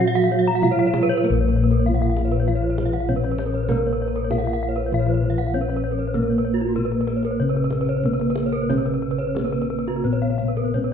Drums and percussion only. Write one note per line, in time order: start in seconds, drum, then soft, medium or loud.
0.15 kendang slap soft
0.31 kendang slap soft
0.62 kendang slap soft
0.62 kendang low medium
0.79 kendang slap soft
0.94 kendang high medium
0.94 kendang low medium
1.09 kendang slap soft
1.24 kendang low soft
1.71 kendang slap soft
1.86 kendang low soft
2.01 kendang slap soft
2.17 kendang high soft
2.32 kendang slap soft
2.62 kendang slap soft
2.78 kendang high soft
2.78 kendang low soft
2.93 kendang slap soft
3.08 kendang low medium
3.24 kendang slap soft
3.38 kendang high soft
3.54 kendang slap soft
3.69 kendang high soft
3.69 kendang low medium
4.15 kendang slap soft
4.31 kendang high soft
4.31 kendang low soft
4.46 kendang slap soft
4.76 kendang slap soft
5.07 kendang slap soft
5.22 kendang low soft
5.38 kendang slap soft
5.54 kendang low soft
5.68 kendang slap soft
5.99 kendang slap soft
6.14 kendang low soft
6.76 kendang low soft
6.92 kendang slap soft
7.08 kendang high soft
7.23 kendang slap soft
7.55 kendang slap soft
7.70 kendang high soft
7.70 kendang low soft
7.87 kendang slap soft
8.03 kendang low soft
8.19 kendang slap soft
8.36 kendang high soft
8.53 kendang slap soft
8.70 kendang high soft
8.70 kendang low soft
8.86 kendang slap soft
9.20 kendang slap soft
9.37 kendang high soft
9.37 kendang low soft
9.54 kendang slap soft
9.88 kendang slap soft
10.22 kendang slap soft
10.39 kendang low soft
10.57 kendang slap soft
10.74 kendang low soft